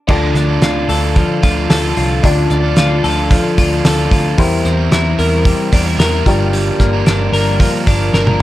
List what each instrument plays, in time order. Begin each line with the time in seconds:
0.07 picked electric bass D2, overdriven electric guitar D3 F3 D4 F4 A4, clean electric guitar D3, upright piano D4 F4 A4 D5, kick, crash
0.35 picked electric bass D2, clean electric guitar D4, snare, hi-hat pedal, open hi-hat
0.49 overdriven electric guitar D4 F4 A4
0.62 picked electric bass D2, clean electric guitar F4, snare, hi-hat pedal, open hi-hat
0.88 picked electric bass D2, overdriven electric guitar F3 D4 F4 A4, clean electric guitar A4, hi-hat pedal, open hi-hat
1.16 clean electric guitar F3, kick, hi-hat pedal, open hi-hat
1.42 picked electric bass D2, overdriven electric guitar F3 D4 F4 A4, clean electric guitar F4, kick, hi-hat pedal, open hi-hat
1.69 picked electric bass D2, overdriven electric guitar F3 D4 F4 A4, clean electric guitar A4, snare, hi-hat pedal, open hi-hat
1.82 overdriven electric guitar D4 F4 A4
1.97 picked electric bass C2, clean electric guitar F4, hi-hat pedal, open hi-hat
2.23 picked electric bass D2, overdriven electric guitar D3 F3 D4 F4 A4, clean electric guitar D3, upright piano D4 F4 A4 D5, kick, hi-hat pedal, open hi-hat
2.50 picked electric bass D2, clean electric guitar D4, hi-hat pedal, open hi-hat
2.63 overdriven electric guitar D4 F4 A4
2.76 picked electric bass D2, clean electric guitar F4, snare, hi-hat pedal, open hi-hat
3.03 picked electric bass D2, overdriven electric guitar F3 D4 F4 A4, clean electric guitar A4, hi-hat pedal, open hi-hat
3.31 clean electric guitar F3, kick, hi-hat pedal, open hi-hat
3.57 picked electric bass D2, overdriven electric guitar F3 D4 F4 A4, clean electric guitar F4, kick, hi-hat pedal, open hi-hat
3.84 picked electric bass D2, overdriven electric guitar F3 D4 F4 A4, clean electric guitar A4, snare, hi-hat pedal, open hi-hat
3.97 overdriven electric guitar D4 F4 A4
4.11 picked electric bass D2, clean electric guitar F4, kick, hi-hat pedal, open hi-hat
4.37 picked electric bass E2, overdriven electric guitar E3 G3 C4 E4 A#4, clean electric guitar E3, upright piano E4 G4 A#4 C5, kick, hi-hat pedal, open hi-hat
4.65 picked electric bass E2, clean electric guitar C4, snare, hi-hat pedal, open hi-hat
4.77 overdriven electric guitar C4 E4 A#4
4.91 picked electric bass E2, clean electric guitar E4, snare, hi-hat pedal, open hi-hat
5.17 picked electric bass E2, overdriven electric guitar G3 C4 E4 A#4, clean electric guitar A#4, hi-hat pedal, open hi-hat
5.45 clean electric guitar G3, kick, hi-hat pedal, open hi-hat
5.72 picked electric bass E2, overdriven electric guitar G3 C4 E4 A#4, clean electric guitar D4, kick, hi-hat pedal, open hi-hat
5.86 clean electric guitar E4
5.98 picked electric bass E2, overdriven electric guitar G3 C4 E4 A#4, clean electric guitar A#4, snare, hi-hat pedal, open hi-hat
6.12 overdriven electric guitar C4 E4 A#4
6.26 picked electric bass G1, overdriven electric guitar G2 D3 F3 A#3 D4 A#4, clean electric guitar G2, upright piano F4 G4 A#4 D5, kick, hi-hat pedal, open hi-hat
6.53 clean electric guitar G2, hi-hat pedal, open hi-hat
6.80 picked electric bass G1, clean electric guitar A#3, kick, snare, hi-hat pedal, open hi-hat
6.93 overdriven electric guitar F3 A#3 D4 A#4
7.06 picked electric bass G1, clean electric guitar D4, snare, hi-hat pedal, open hi-hat
7.33 picked electric bass G1, overdriven electric guitar F3 A#3 D4 A#4, clean electric guitar A#4, hi-hat pedal, open hi-hat
7.60 clean electric guitar F3, kick, hi-hat pedal, open hi-hat
7.86 picked electric bass G1, overdriven electric guitar F3 A#3 D4 A#4, clean electric guitar D4, kick, hi-hat pedal, open hi-hat
8.13 picked electric bass G1, overdriven electric guitar F3 A#3 D4 A#4, clean electric guitar A#4, snare
8.26 overdriven electric guitar F3 A#3 D4 A#4, high tom